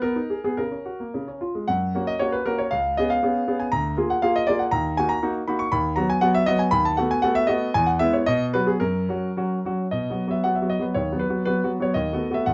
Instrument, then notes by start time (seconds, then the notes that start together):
grand piano
0.02 B3 A#4
0.16 D#4
0.30 G#4
0.44 B3 G#4
0.57 C#3 A#4
0.72 C#4
0.85 F#4
1.00 A#3
1.14 C#3
1.28 C#4
1.41 F4
1.55 G#3
1.68 F#2 F#5
1.95 A#3 C#4 F#4
2.07 D#5
2.19 A#3 C#4 F#4 C#5
2.32 B4
2.46 A#3 C#4 F#4 A#4
2.58 C#5
2.71 C#2 F5
2.97 B3 C#4 G#4 D#5
3.10 F5
3.23 B3 C#4 G#4
3.48 B3 C#4 G#4
3.60 G#5
3.72 D2 A#5
3.97 A#3 F4 G#4
4.10 F#5
4.22 A#3 F4 G#4 F5
4.36 D#5
4.47 A#3 F4 G#4 D5
4.59 F#5
4.71 D#2 A#5
4.97 A#3 D#4 F#4 G#5
5.09 A#5
5.23 A#3 D#4 F#4
5.47 A#3 D#4 F#4 B5
5.59 C#6
5.72 D#2 B5
5.96 F#3 B3 F#4 A#5
6.10 G#5
6.21 F#3 B3 F#4 F#5
6.35 E5
6.46 F#3 B3 F#4 D#5
6.59 G#5
6.71 D#2 B5
6.85 A5
6.97 A3 B3 F#4 F#5
7.11 G#5
7.22 A3 B3 F#4 F#5
7.35 E5
7.47 A3 B3 F#4 D#5
7.74 E2 G#5
7.86 F#5
7.99 G#3 B3 E4 E5
8.13 C#5
8.26 B2 D#5
8.54 F#3 B3 F#4 B4
8.67 G#4
8.80 F#2 A#4
9.09 F#3 C#4 F#4
9.37 F#3 C#4 F#4
9.65 F#3 C#4 F#4
9.91 B2 D#5
10.10 F#3 B3 F#4
10.27 F#3 B3 F#4 E5
10.44 F#3 B3 F#4 F#5
10.55 E5
10.62 F#3 B3 F#4
10.70 D#5
10.79 F#3 B3 F#4 B4
10.94 D#2 C#5
11.12 F#3 B3 F#4
11.19 B4
11.29 F#3 B3 F#4
11.45 F#3 B3 F#4 B4
11.64 F#3 B3 F#4
11.80 F#3 B3 F#4 C#5
11.94 D#2 D#5
12.13 A3 B3 F#4
12.31 A3 B3 F#4 E5
12.46 E2 F#5